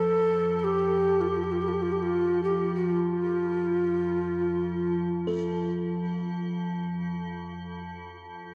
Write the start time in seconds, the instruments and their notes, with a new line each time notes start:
Already playing: ambient pad F2 F3, native american-style wooden flute A4
0.59 native american-style wooden flute A4
0.64 native american-style wooden flute G4
1.21 native american-style wooden flute F4
1.28 native american-style wooden flute G4
1.36 native american-style wooden flute F4
1.44 native american-style wooden flute G4
1.52 native american-style wooden flute F4
1.62 native american-style wooden flute G4
1.68 native american-style wooden flute F4
1.73 native american-style wooden flute G4
1.82 native american-style wooden flute F4
1.92 native american-style wooden flute G4
1.99 native american-style wooden flute F4 G4
2.44 native american-style wooden flute G4
2.75 native american-style wooden flute F4
4.57 ambient pad F2 F3
5.27 kalimba A4